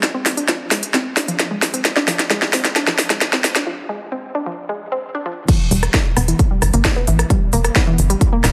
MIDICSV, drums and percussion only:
0, 0, Header, 1, 2, 480
1, 0, Start_track
1, 0, Tempo, 454545
1, 32, Time_signature, 4, 2, 24, 8
1, 8998, End_track
2, 0, Start_track
2, 0, Title_t, "Drums"
2, 32, Note_on_c, 9, 38, 84
2, 32, Note_on_c, 9, 42, 63
2, 137, Note_off_c, 9, 38, 0
2, 137, Note_off_c, 9, 42, 0
2, 272, Note_on_c, 9, 38, 82
2, 272, Note_on_c, 9, 46, 98
2, 377, Note_off_c, 9, 38, 0
2, 377, Note_off_c, 9, 46, 0
2, 395, Note_on_c, 9, 42, 58
2, 500, Note_off_c, 9, 42, 0
2, 511, Note_on_c, 9, 38, 82
2, 511, Note_on_c, 9, 42, 64
2, 617, Note_off_c, 9, 38, 0
2, 617, Note_off_c, 9, 42, 0
2, 752, Note_on_c, 9, 38, 87
2, 752, Note_on_c, 9, 46, 107
2, 857, Note_off_c, 9, 38, 0
2, 857, Note_off_c, 9, 46, 0
2, 875, Note_on_c, 9, 42, 63
2, 980, Note_off_c, 9, 42, 0
2, 993, Note_on_c, 9, 38, 84
2, 993, Note_on_c, 9, 42, 64
2, 1099, Note_off_c, 9, 38, 0
2, 1099, Note_off_c, 9, 42, 0
2, 1233, Note_on_c, 9, 38, 89
2, 1233, Note_on_c, 9, 46, 101
2, 1338, Note_off_c, 9, 38, 0
2, 1338, Note_off_c, 9, 46, 0
2, 1356, Note_on_c, 9, 42, 63
2, 1461, Note_off_c, 9, 42, 0
2, 1473, Note_on_c, 9, 38, 89
2, 1473, Note_on_c, 9, 42, 64
2, 1579, Note_off_c, 9, 38, 0
2, 1579, Note_off_c, 9, 42, 0
2, 1713, Note_on_c, 9, 38, 87
2, 1713, Note_on_c, 9, 46, 99
2, 1819, Note_off_c, 9, 38, 0
2, 1819, Note_off_c, 9, 46, 0
2, 1835, Note_on_c, 9, 42, 65
2, 1941, Note_off_c, 9, 42, 0
2, 1952, Note_on_c, 9, 38, 97
2, 1952, Note_on_c, 9, 42, 67
2, 2058, Note_off_c, 9, 38, 0
2, 2058, Note_off_c, 9, 42, 0
2, 2075, Note_on_c, 9, 38, 78
2, 2181, Note_off_c, 9, 38, 0
2, 2194, Note_on_c, 9, 38, 98
2, 2194, Note_on_c, 9, 46, 101
2, 2299, Note_off_c, 9, 38, 0
2, 2299, Note_off_c, 9, 46, 0
2, 2316, Note_on_c, 9, 38, 76
2, 2316, Note_on_c, 9, 42, 64
2, 2421, Note_off_c, 9, 38, 0
2, 2421, Note_off_c, 9, 42, 0
2, 2434, Note_on_c, 9, 38, 93
2, 2434, Note_on_c, 9, 42, 66
2, 2540, Note_off_c, 9, 38, 0
2, 2540, Note_off_c, 9, 42, 0
2, 2555, Note_on_c, 9, 38, 83
2, 2660, Note_off_c, 9, 38, 0
2, 2672, Note_on_c, 9, 38, 97
2, 2672, Note_on_c, 9, 46, 99
2, 2778, Note_off_c, 9, 38, 0
2, 2778, Note_off_c, 9, 46, 0
2, 2794, Note_on_c, 9, 38, 82
2, 2794, Note_on_c, 9, 42, 68
2, 2900, Note_off_c, 9, 38, 0
2, 2900, Note_off_c, 9, 42, 0
2, 2913, Note_on_c, 9, 38, 90
2, 2913, Note_on_c, 9, 42, 62
2, 3018, Note_off_c, 9, 38, 0
2, 3018, Note_off_c, 9, 42, 0
2, 3035, Note_on_c, 9, 38, 86
2, 3140, Note_off_c, 9, 38, 0
2, 3152, Note_on_c, 9, 38, 99
2, 3152, Note_on_c, 9, 46, 104
2, 3258, Note_off_c, 9, 38, 0
2, 3258, Note_off_c, 9, 46, 0
2, 3275, Note_on_c, 9, 38, 85
2, 3275, Note_on_c, 9, 42, 63
2, 3380, Note_off_c, 9, 38, 0
2, 3380, Note_off_c, 9, 42, 0
2, 3393, Note_on_c, 9, 38, 97
2, 3393, Note_on_c, 9, 42, 65
2, 3499, Note_off_c, 9, 38, 0
2, 3499, Note_off_c, 9, 42, 0
2, 3516, Note_on_c, 9, 38, 93
2, 3621, Note_off_c, 9, 38, 0
2, 3634, Note_on_c, 9, 38, 103
2, 3634, Note_on_c, 9, 46, 98
2, 3739, Note_off_c, 9, 38, 0
2, 3739, Note_off_c, 9, 46, 0
2, 3754, Note_on_c, 9, 38, 87
2, 3754, Note_on_c, 9, 42, 64
2, 3860, Note_off_c, 9, 38, 0
2, 3860, Note_off_c, 9, 42, 0
2, 5792, Note_on_c, 9, 36, 125
2, 5792, Note_on_c, 9, 42, 67
2, 5792, Note_on_c, 9, 49, 105
2, 5897, Note_off_c, 9, 36, 0
2, 5897, Note_off_c, 9, 42, 0
2, 5897, Note_off_c, 9, 49, 0
2, 6032, Note_on_c, 9, 46, 102
2, 6138, Note_off_c, 9, 46, 0
2, 6154, Note_on_c, 9, 37, 88
2, 6154, Note_on_c, 9, 42, 69
2, 6260, Note_off_c, 9, 37, 0
2, 6260, Note_off_c, 9, 42, 0
2, 6271, Note_on_c, 9, 36, 123
2, 6272, Note_on_c, 9, 38, 127
2, 6272, Note_on_c, 9, 42, 68
2, 6377, Note_off_c, 9, 36, 0
2, 6377, Note_off_c, 9, 38, 0
2, 6377, Note_off_c, 9, 42, 0
2, 6511, Note_on_c, 9, 37, 80
2, 6511, Note_on_c, 9, 46, 109
2, 6617, Note_off_c, 9, 37, 0
2, 6617, Note_off_c, 9, 46, 0
2, 6633, Note_on_c, 9, 42, 67
2, 6739, Note_off_c, 9, 42, 0
2, 6750, Note_on_c, 9, 42, 68
2, 6751, Note_on_c, 9, 36, 116
2, 6856, Note_off_c, 9, 42, 0
2, 6857, Note_off_c, 9, 36, 0
2, 6991, Note_on_c, 9, 37, 91
2, 6991, Note_on_c, 9, 46, 105
2, 7096, Note_off_c, 9, 37, 0
2, 7096, Note_off_c, 9, 46, 0
2, 7112, Note_on_c, 9, 42, 69
2, 7218, Note_off_c, 9, 42, 0
2, 7231, Note_on_c, 9, 36, 117
2, 7231, Note_on_c, 9, 38, 127
2, 7231, Note_on_c, 9, 42, 69
2, 7336, Note_off_c, 9, 36, 0
2, 7336, Note_off_c, 9, 38, 0
2, 7336, Note_off_c, 9, 42, 0
2, 7470, Note_on_c, 9, 46, 102
2, 7575, Note_off_c, 9, 46, 0
2, 7593, Note_on_c, 9, 37, 86
2, 7593, Note_on_c, 9, 42, 71
2, 7699, Note_off_c, 9, 37, 0
2, 7699, Note_off_c, 9, 42, 0
2, 7711, Note_on_c, 9, 36, 127
2, 7711, Note_on_c, 9, 42, 71
2, 7816, Note_off_c, 9, 36, 0
2, 7817, Note_off_c, 9, 42, 0
2, 7951, Note_on_c, 9, 46, 109
2, 8057, Note_off_c, 9, 46, 0
2, 8073, Note_on_c, 9, 37, 87
2, 8073, Note_on_c, 9, 42, 69
2, 8179, Note_off_c, 9, 37, 0
2, 8179, Note_off_c, 9, 42, 0
2, 8190, Note_on_c, 9, 38, 122
2, 8190, Note_on_c, 9, 42, 66
2, 8191, Note_on_c, 9, 36, 124
2, 8296, Note_off_c, 9, 38, 0
2, 8296, Note_off_c, 9, 42, 0
2, 8297, Note_off_c, 9, 36, 0
2, 8431, Note_on_c, 9, 46, 109
2, 8537, Note_off_c, 9, 46, 0
2, 8554, Note_on_c, 9, 42, 69
2, 8659, Note_off_c, 9, 42, 0
2, 8671, Note_on_c, 9, 36, 120
2, 8671, Note_on_c, 9, 42, 68
2, 8777, Note_off_c, 9, 36, 0
2, 8777, Note_off_c, 9, 42, 0
2, 8911, Note_on_c, 9, 37, 91
2, 8911, Note_on_c, 9, 38, 63
2, 8911, Note_on_c, 9, 46, 108
2, 8998, Note_off_c, 9, 37, 0
2, 8998, Note_off_c, 9, 38, 0
2, 8998, Note_off_c, 9, 46, 0
2, 8998, End_track
0, 0, End_of_file